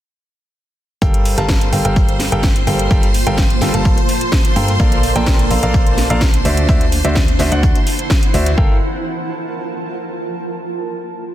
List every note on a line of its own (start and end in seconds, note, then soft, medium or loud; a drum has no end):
1.02 1.35 G1 loud
1.02 1.35 G3 medium
1.02 5.46 F4 medium
1.02 1.35 A4 medium
1.02 1.35 A#4 medium
1.02 8.59 C5 medium
1.02 1.35 F5 medium
1.02 1.35 G5 medium
1.02 8.59 C6 medium
1.02 kick loud
1.02 closed hi-hat medium
1.14 closed hi-hat medium
1.19 6.45 A#3 medium
1.25 closed hi-hat medium
1.25 open hi-hat loud
1.38 1.70 G1 loud
1.38 1.70 G3 medium
1.38 1.70 A4 medium
1.38 1.70 A#4 medium
1.38 1.70 F5 medium
1.38 1.70 A5 loud
1.38 snare soft
1.38 closed hi-hat medium
1.49 kick loud
1.49 snare loud
1.49 closed hi-hat medium
1.61 closed hi-hat soft
1.73 1.82 G1 loud
1.73 1.82 G3 medium
1.73 1.82 A4 medium
1.73 1.82 A#4 medium
1.73 1.82 F5 medium
1.73 1.82 G5 medium
1.73 closed hi-hat medium
1.73 open hi-hat medium
1.85 2.30 G1 medium
1.85 2.29 G3 medium
1.85 2.29 A4 medium
1.85 2.29 A#4 medium
1.85 2.29 F5 medium
1.85 2.29 G5 medium
1.85 closed hi-hat medium
1.96 kick loud
1.96 closed hi-hat medium
2.09 closed hi-hat soft
2.19 snare medium
2.19 closed hi-hat medium
2.19 open hi-hat loud
2.32 2.65 G1 medium
2.32 2.46 G3 medium
2.32 2.46 A4 medium
2.32 2.46 A#4 medium
2.32 2.46 F5 medium
2.32 2.46 G5 loud
2.32 closed hi-hat medium
2.43 7.31 A5 medium
2.43 kick loud
2.43 snare loud
2.43 closed hi-hat medium
2.56 closed hi-hat medium
2.67 2.88 G1 loud
2.67 2.88 G3 medium
2.67 2.88 A4 medium
2.67 2.88 A#4 medium
2.67 2.88 F5 medium
2.67 2.88 G5 medium
2.67 closed hi-hat medium
2.67 open hi-hat medium
2.79 closed hi-hat medium
2.91 3.24 G1 loud
2.91 3.05 G3 loud
2.91 3.05 A4 loud
2.91 3.05 A#4 loud
2.91 3.05 F5 medium
2.91 3.05 G5 loud
2.91 kick loud
2.91 closed hi-hat medium
3.03 closed hi-hat medium
3.14 closed hi-hat medium
3.14 open hi-hat loud
3.27 3.59 G1 loud
3.27 3.41 G3 medium
3.27 3.41 A4 medium
3.27 3.41 A#4 medium
3.27 3.41 F5 medium
3.27 3.41 G5 loud
3.27 closed hi-hat medium
3.37 kick loud
3.37 snare loud
3.37 closed hi-hat medium
3.50 closed hi-hat soft
3.61 3.71 G1 medium
3.61 3.71 G3 medium
3.61 3.71 A4 medium
3.61 3.71 A#4 medium
3.61 3.71 F5 medium
3.61 3.71 G5 loud
3.61 snare medium
3.61 closed hi-hat medium
3.61 open hi-hat loud
3.74 3.94 G1 loud
3.74 3.97 G3 medium
3.74 3.97 A4 medium
3.74 3.97 A#4 medium
3.74 3.97 F5 medium
3.74 3.97 A5 medium
3.74 closed hi-hat medium
3.85 kick loud
3.85 closed hi-hat medium
3.98 closed hi-hat soft
4.09 snare soft
4.09 closed hi-hat medium
4.09 open hi-hat loud
4.21 closed hi-hat medium
4.32 kick loud
4.32 snare loud
4.32 closed hi-hat medium
4.45 closed hi-hat medium
4.56 4.78 G2 loud
4.56 4.71 A#3 medium
4.56 4.71 A4 medium
4.56 4.71 A#4 medium
4.56 4.71 F5 medium
4.56 4.71 G5 medium
4.56 closed hi-hat medium
4.56 open hi-hat medium
4.68 snare soft
4.68 closed hi-hat medium
4.80 5.13 A#1 loud
4.80 5.13 A#3 medium
4.80 7.30 D4 medium
4.80 5.13 A4 medium
4.80 5.13 A#4 medium
4.80 5.13 D5 medium
4.80 5.13 F5 medium
4.80 kick loud
4.80 closed hi-hat medium
4.92 closed hi-hat medium
5.03 closed hi-hat medium
5.03 open hi-hat loud
5.16 5.48 A#1 loud
5.16 5.48 A#3 medium
5.16 5.48 A4 medium
5.16 5.48 A#4 medium
5.16 5.48 D5 medium
5.16 5.48 G5 loud
5.16 snare soft
5.16 closed hi-hat medium
5.26 kick loud
5.26 snare loud
5.26 closed hi-hat medium
5.39 closed hi-hat soft
5.51 5.60 A#1 loud
5.51 5.60 A#3 medium
5.51 5.60 A4 medium
5.51 5.60 A#4 medium
5.51 5.60 D5 medium
5.51 5.60 F5 medium
5.51 closed hi-hat medium
5.51 open hi-hat loud
5.63 6.08 A#1 medium
5.63 6.07 A#3 medium
5.63 6.07 A4 medium
5.63 6.07 A#4 medium
5.63 6.07 D5 medium
5.63 6.07 F5 medium
5.63 closed hi-hat medium
5.74 kick loud
5.74 closed hi-hat medium
5.87 closed hi-hat soft
5.97 snare medium
5.97 closed hi-hat medium
5.97 open hi-hat loud
6.10 6.43 A#1 medium
6.10 6.24 A#3 loud
6.10 6.24 A4 medium
6.10 6.24 A#4 medium
6.10 6.24 D5 medium
6.10 6.24 F5 loud
6.10 closed hi-hat medium
6.21 kick loud
6.21 snare loud
6.21 closed hi-hat medium
6.34 closed hi-hat medium
6.45 6.66 D2 loud
6.45 6.66 D3 medium
6.45 8.58 E4 medium
6.45 6.66 F#4 medium
6.45 6.66 C5 medium
6.45 6.66 D5 medium
6.45 6.66 E5 loud
6.45 closed hi-hat medium
6.45 open hi-hat medium
6.57 closed hi-hat medium
6.69 7.02 D2 loud
6.69 6.83 D3 loud
6.69 6.83 F#4 loud
6.69 6.83 C5 medium
6.69 6.83 D5 loud
6.69 6.83 E5 loud
6.69 kick loud
6.69 closed hi-hat medium
6.81 closed hi-hat medium
6.92 closed hi-hat medium
6.92 open hi-hat loud
7.05 7.37 D2 medium
7.05 7.19 D3 medium
7.05 7.19 F#4 medium
7.05 7.19 C5 medium
7.05 7.19 D5 medium
7.05 7.19 E5 loud
7.05 closed hi-hat medium
7.15 kick loud
7.15 snare loud
7.15 closed hi-hat medium
7.28 closed hi-hat soft
7.39 7.49 D2 loud
7.39 7.49 D3 medium
7.39 7.49 F#4 medium
7.39 7.49 C5 medium
7.39 7.49 D5 medium
7.39 7.49 E5 loud
7.39 snare medium
7.39 closed hi-hat medium
7.39 open hi-hat loud
7.52 7.72 D2 loud
7.52 7.75 D3 medium
7.52 7.75 F#4 medium
7.52 7.75 C5 medium
7.52 7.75 D5 medium
7.52 7.75 F#5 loud
7.52 closed hi-hat medium
7.63 kick loud
7.63 closed hi-hat medium
7.75 closed hi-hat soft
7.87 snare soft
7.87 closed hi-hat medium
7.87 open hi-hat loud
7.99 closed hi-hat medium
8.10 kick loud
8.10 snare loud
8.10 closed hi-hat medium
8.23 closed hi-hat medium
8.34 8.55 D2 loud
8.34 8.49 F#4 medium
8.34 8.49 C5 medium
8.34 8.49 D5 medium
8.34 8.49 E5 medium
8.34 closed hi-hat medium
8.34 open hi-hat medium
8.46 snare soft
8.46 closed hi-hat medium
8.58 8.80 G1 loud
8.58 10.43 F4 medium
8.58 8.75 A4 medium
8.58 8.75 A#4 medium
8.58 8.75 F5 medium
8.58 8.75 G5 loud
8.58 kick loud
8.65 10.43 A#4 medium
8.72 10.43 A5 medium